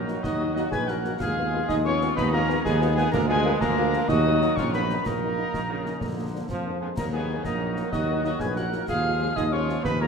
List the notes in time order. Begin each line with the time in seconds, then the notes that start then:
Already playing: A#1 D#3 F#3 A#3 D#4 A#4 A#5
0.08 A#3 D#4 F#4, snare
0.22 D#2 D#4 F#4 D#5 D#6, concert bass drum, snare
0.40 A#3 D#4 F#4
0.54 A#3 D#4 F#4 D#5 D#6, snare
0.71 A#1 G#4 B4 G#5 G#6, concert bass drum, snare
0.87 A#3 D#4 F#4 A#4 F#5 F#6, snare
1.05 A#3 D#4 F#4, snare
1.19 D#2 F3 G#3 F4 G#4 F5 F6, concert bass drum, snare, crash
1.37 G#3 B3 F4
1.53 G#3 B3 F4
1.68 D#2 D#4 G#4 D#5 D#6, concert bass drum, snare
1.85 G#3 B3 C#4 F4 C#5 C#6
2.01 G#3 B3 F4, snare
2.16 D#2 B3 D#4 B4 B5, concert bass drum, snare
2.32 G#3 A#3 B3 C#4 F4 A#4 A#5
2.48 G#3 B3 F4, snare
2.64 D#2 G#3 B3 G#4 G#5, concert bass drum, snare
2.81 G#3 B3 F4, snare
2.96 G#3 B3 F4 G#4 G#5, snare
3.11 D2 F3 G#3 A#3 D4 A#4 A#5, concert bass drum, snare, crash
3.27 G#3 A#3 B3 F4 G#4 G#5
3.44 G#3 A#3 F4
3.60 D2 A#3 D4 A#4 A#5, concert bass drum, snare
3.76 G#3 A#3 F4
3.92 G#3 A#3 F4, snare
4.08 D#2 D#3 F#3 D#4 F#4 D#5 D#6, concert bass drum, snare
4.24 F#3 A#3 D#4
4.41 F#3 A#3 D#4, snare
4.56 A#1 C#4 F4 C#5 C#6, concert bass drum, snare
4.73 F#3 A#3 B3 D#4 B4 B5, snare
4.90 F#3 A#3 D#4, snare
5.05 A#1 A#3 D#4 A#4 A#5, concert bass drum, snare, crash
5.22 F#3 A#3 D#4
5.37 F#3 A#3 D#4
5.52 A#1 D#3, concert bass drum, snare
5.69 C#3 F#3 A#3 D#4
5.85 F#3 A#3 D#4, snare
6.01 A#1 D3, concert bass drum, snare
6.16 F3 A#3 D4
6.33 F3 A#3 D4
6.49 F2 F3, concert bass drum, snare
6.64 F3 A#3 D4
6.80 F3 G#3 A#3 B3 D4 G#4 G#5
6.96 D#2 D#3 F#3 A#3 D#4 A#4 A#5, concert bass drum, snare, crash
7.13 F#3 G#3 A#3 B3 D#4 G#4 G#5
7.28 F#3 A#3 D#4
7.44 A#1 A#3 D#4 A#4 A#5, concert bass drum, snare
7.60 F#3 A#3 D#4
7.76 F#3 A#3 D#4, snare
7.91 D#2 D#4 F#4 D#5 D#6, concert bass drum, snare
8.09 F#3 A#3 D#4
8.23 F#3 A#3 D#4 F#4 D#5 D#6, snare
8.39 A#1 G#4 B4 G#5 G#6, concert bass drum, snare
8.55 F#3 A#3 D#4 F#4 A#4 F#5 F#6, snare
8.72 F#3 A#3 D#4, snare
8.88 D#2 F3 G#3 F4 G#4 F5 F6, concert bass drum, snare, crash
9.04 F3 G#3 F4
9.20 F3 G#3 F4
9.35 D#2 D#4 G#4 D#5 D#6, concert bass drum, snare
9.52 F3 G#3 C#4 F4 C#5 C#6
9.68 F3 G#3 F4, snare
9.82 D#2 B3 D#4 B4 B5, concert bass drum, snare
9.99 F3 G#3 A#3 C#4 F4 A#4 A#5